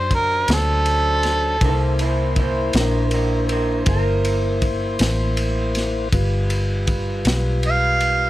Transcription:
0.00 0.45 F#2 medium
0.00 1.57 F#3 medium
0.00 1.57 D4 medium
0.00 0.11 C5 medium
0.00 1.57 C5 medium
0.11 kick medium
0.11 ride medium
0.15 0.49 A#4 medium
0.48 1.58 D2 medium
0.48 snare loud
0.48 ride medium
0.53 1.97 A4 loud
0.86 ride medium
1.23 snare soft
1.23 ride medium
1.61 2.71 C2 medium
1.61 6.08 A#3 medium
1.61 6.09 E4 medium
1.61 2.00 E4 medium
1.61 6.09 C5 medium
1.61 kick medium
1.61 ride medium
1.65 1.99 C5 medium
1.99 2.35 E4 medium
1.99 2.37 C5 medium
1.99 ride medium
2.36 2.73 E4 medium
2.36 2.74 C5 medium
2.36 kick medium
2.36 ride medium
2.73 3.84 A#1 medium
2.73 3.10 D4 medium
2.73 3.12 A#4 medium
2.73 snare loud
2.73 ride medium
3.11 3.48 D4 medium
3.11 3.49 A#4 medium
3.11 ride medium
3.49 3.85 D4 medium
3.49 3.87 A#4 medium
3.49 ride medium
3.86 4.96 G1 medium
3.86 4.61 A#4 loud
3.86 kick loud
3.86 ride medium
4.25 ride medium
4.62 kick medium
4.62 ride medium
4.99 6.09 A1 medium
4.99 snare loud
4.99 ride medium
5.37 ride medium
5.75 snare soft
5.75 ride medium
6.12 7.22 G1 medium
6.12 8.30 G3 medium
6.12 8.30 F4 medium
6.12 8.30 B4 medium
6.12 kick medium
6.12 ride medium
6.50 ride medium
6.87 kick medium
6.87 ride medium
7.25 8.30 B1 medium
7.25 snare loud
7.25 ride medium
7.63 ride medium
7.68 8.30 F5 loud
8.00 ride medium

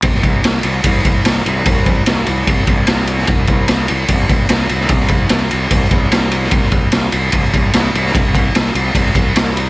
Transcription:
0.02 0.22 C2 medium
0.02 kick loud
0.02 ride medium
0.15 snare soft
0.23 0.42 C2 medium
0.23 kick medium
0.23 ride medium
0.44 0.63 C2 medium
0.44 snare loud
0.44 ride medium
0.63 0.82 C2 medium
0.63 ride medium
0.84 1.02 C2 loud
0.84 kick medium
0.84 ride loud
1.04 1.23 C2 medium
1.04 kick medium
1.04 ride medium
1.25 1.43 C2 medium
1.25 snare loud
1.25 ride loud
1.46 1.64 C2 medium
1.46 ride medium
1.65 2.02 C2 loud
1.65 kick loud
1.65 ride medium
1.86 kick medium
1.86 ride medium
2.06 2.25 C2 medium
2.06 snare loud
2.06 ride medium
2.26 2.45 C2 medium
2.26 ride medium
2.47 2.65 C2 loud
2.47 kick medium
2.47 ride medium
2.67 2.85 C2 medium
2.67 kick medium
2.67 ride medium
2.87 3.24 C2 medium
2.87 snare loud
2.87 ride medium
3.07 ride medium
3.18 snare soft
3.27 3.46 C2 medium
3.27 kick loud
3.27 ride medium
3.47 3.66 C2 medium
3.47 kick medium
3.47 ride medium
3.68 3.87 C2 medium
3.68 snare loud
3.68 ride medium
3.88 4.08 C2 medium
3.88 ride medium
4.08 4.27 C2 loud
4.08 kick medium
4.08 ride loud
4.29 4.47 C2 medium
4.29 kick medium
4.29 ride medium
4.49 4.67 C2 medium
4.49 snare loud
4.49 ride loud
4.69 4.88 C2 medium
4.69 ride medium
4.81 snare soft
4.89 5.26 C2 medium
4.89 kick loud
4.89 ride medium
5.00 snare soft
5.08 kick medium
5.08 ride medium
5.29 5.49 C2 medium
5.29 snare loud
5.29 ride medium
5.51 5.70 C2 medium
5.51 ride medium
5.71 5.89 C2 medium
5.71 kick medium
5.71 ride medium
5.91 6.09 C2 medium
5.91 kick medium
5.91 ride medium
6.12 6.48 C2 medium
6.12 snare loud
6.12 ride medium
6.31 ride medium
6.44 snare soft
6.51 6.70 C2 medium
6.51 kick loud
6.51 ride medium
6.63 snare soft
6.72 6.90 C2 medium
6.72 kick medium
6.72 ride medium
6.92 7.10 C2 medium
6.92 snare loud
6.92 ride medium
7.12 7.31 C2 medium
7.12 ride medium
7.32 7.51 C2 loud
7.32 kick medium
7.32 ride loud
7.54 7.71 C2 medium
7.54 kick medium
7.54 ride medium
7.73 7.91 C2 medium
7.73 snare loud
7.73 ride loud
7.94 8.12 C2 medium
7.94 ride medium
8.06 snare soft
8.15 8.50 C2 loud
8.15 kick loud
8.15 ride medium
8.35 kick medium
8.35 ride medium
8.55 8.73 C2 medium
8.55 snare loud
8.55 ride medium
8.75 8.92 C2 medium
8.75 ride medium
8.95 9.12 C2 medium
8.95 kick medium
8.95 ride loud
9.15 9.33 C2 medium
9.15 kick medium
9.15 ride medium
9.36 9.70 C2 medium
9.36 snare loud
9.36 ride medium
9.57 ride medium

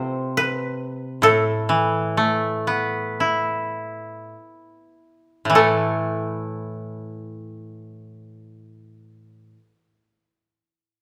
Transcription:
0.00 1.22 C3 medium
0.00 2.11 A3 soft
0.00 1.60 E4 medium
0.00 1.57 F4 medium
0.00 1.23 A4 medium
0.00 0.37 B4 medium
0.00 0.43 C5 loud
0.37 2.15 B4 medium
1.22 4.32 A2 medium
1.22 4.28 A4 medium
1.69 3.74 E3 soft
2.17 4.32 A3 soft
2.67 4.93 B3 soft
3.20 5.56 E4 soft
5.45 9.52 A2 soft
5.50 9.57 E3 medium
5.55 9.62 A3 soft
5.55 9.58 A4 medium

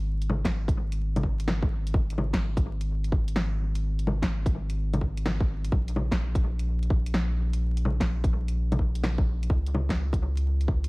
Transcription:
0.00 5.71 G#1 medium
0.22 closed hi-hat soft
0.30 low bongo medium
0.45 kick medium
0.45 snare loud
0.45 closed hi-hat medium
0.68 kick loud
0.68 closed hi-hat soft
0.92 closed hi-hat medium
1.16 closed hi-hat soft
1.16 low bongo medium
1.23 kick medium
1.40 closed hi-hat medium
1.48 snare loud
1.48 low bongo medium
1.62 kick loud
1.87 closed hi-hat medium
1.94 kick loud
2.10 closed hi-hat soft
2.18 low bongo medium
2.33 kick medium
2.33 snare loud
2.33 closed hi-hat medium
2.57 kick loud
2.57 closed hi-hat soft
2.81 closed hi-hat medium
3.04 closed hi-hat soft
3.12 kick loud
3.28 closed hi-hat medium
3.36 snare loud
3.75 closed hi-hat medium
3.99 closed hi-hat soft
4.07 low bongo medium
4.22 kick medium
4.22 snare loud
4.22 closed hi-hat medium
4.46 kick loud
4.46 closed hi-hat soft
4.70 closed hi-hat medium
4.93 closed hi-hat soft
4.93 low bongo medium
5.01 kick medium
5.17 closed hi-hat medium
5.26 snare loud
5.26 low bongo medium
5.40 kick loud
5.64 closed hi-hat medium
5.72 9.48 A#1 medium
5.72 kick loud
5.88 closed hi-hat soft
5.96 low bongo medium
6.11 kick medium
6.11 snare loud
6.11 closed hi-hat medium
6.35 kick loud
6.35 closed hi-hat soft
6.59 closed hi-hat medium
6.83 closed hi-hat soft
6.90 kick loud
7.06 closed hi-hat medium
7.14 snare loud
7.53 closed hi-hat medium
7.77 closed hi-hat soft
7.85 low bongo medium
8.00 kick medium
8.00 snare loud
8.00 closed hi-hat medium
8.24 kick loud
8.24 closed hi-hat soft
8.48 closed hi-hat medium
8.72 closed hi-hat soft
8.72 low bongo medium
8.79 kick medium
8.95 closed hi-hat medium
9.04 snare loud
9.04 low bongo medium
9.18 kick loud
9.43 closed hi-hat medium
9.50 10.89 C#2 medium
9.50 kick loud
9.66 closed hi-hat soft
9.75 low bongo medium
9.89 kick medium
9.89 snare loud
9.89 closed hi-hat medium
10.13 kick loud
10.13 closed hi-hat soft
10.37 closed hi-hat medium
10.61 closed hi-hat soft
10.68 kick loud
10.84 closed hi-hat medium

